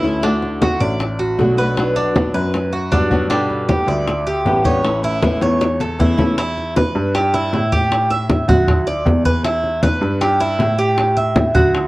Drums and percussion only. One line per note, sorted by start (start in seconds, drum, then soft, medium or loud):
0.04 high bongo soft
0.23 high bongo medium
0.23 high conga soft
0.42 high bongo soft
0.42 high conga soft
0.61 high bongo medium
0.61 high conga medium
0.81 high bongo soft
0.81 high conga soft
1.00 high bongo medium
1.00 high conga soft
1.20 high conga soft
1.38 high bongo soft
1.38 low bongo medium
1.38 high conga soft
1.58 high bongo soft
1.77 high bongo medium
1.77 high conga soft
1.96 high bongo soft
1.96 high conga soft
2.16 high bongo medium
2.16 high conga medium
2.35 high bongo soft
2.35 high conga soft
2.54 high bongo medium
2.54 high conga soft
2.73 high conga soft
2.92 high bongo soft
2.92 low bongo medium
2.92 high conga medium
3.12 high bongo soft
3.12 high conga medium
3.31 high bongo medium
3.31 high conga soft
3.50 high bongo soft
3.50 high conga soft
3.69 high bongo medium
3.69 high conga medium
3.88 high bongo soft
3.88 high conga soft
4.08 high bongo medium
4.08 high conga soft
4.27 high conga soft
4.46 high bongo soft
4.46 low bongo medium
4.46 high conga soft
4.65 high bongo soft
4.65 high conga medium
4.85 high bongo medium
4.85 high conga soft
5.03 high bongo soft
5.03 high conga soft
5.23 high bongo medium
5.23 high conga medium
5.42 high bongo medium
5.42 high conga soft
5.61 high bongo medium
5.61 high conga soft
5.80 low bongo medium
5.80 high conga soft
6.00 high conga medium
6.19 low bongo loud
6.19 high conga medium
6.38 high bongo medium
6.38 high conga soft
6.57 high bongo soft
6.57 high conga soft
6.76 high bongo medium
6.76 high conga medium
6.96 high bongo soft
6.96 high conga soft
7.15 high bongo medium
7.15 high conga soft
7.34 high bongo soft
7.34 high conga soft
7.53 high bongo soft
7.53 low bongo medium
7.53 high conga soft
7.72 high conga medium
7.91 high bongo medium
7.91 high conga soft
8.11 high bongo soft
8.11 high conga soft
8.30 high bongo medium
8.30 high conga medium
8.49 high bongo soft
8.49 high conga soft
8.49 low conga medium
8.68 high bongo medium
8.68 high conga soft
8.68 low conga medium
8.87 high bongo soft
8.87 high conga soft
9.06 high bongo soft
9.06 low bongo medium
9.06 high conga medium
9.25 high conga medium
9.45 high bongo medium
9.45 high conga soft
9.64 high bongo soft
9.64 high conga soft
9.83 high bongo medium
9.83 high conga medium
10.02 high bongo soft
10.02 high conga soft
10.21 high bongo medium
10.21 high conga soft
10.41 high bongo soft
10.41 high conga soft
10.60 high bongo soft
10.60 low bongo medium
10.60 high conga soft
10.98 high bongo medium
10.98 high conga soft
11.17 high bongo soft
11.17 high conga soft
11.36 high bongo medium
11.36 high conga loud
11.55 high bongo soft
11.55 high conga soft
11.55 low conga medium
11.74 high bongo medium
11.74 high conga soft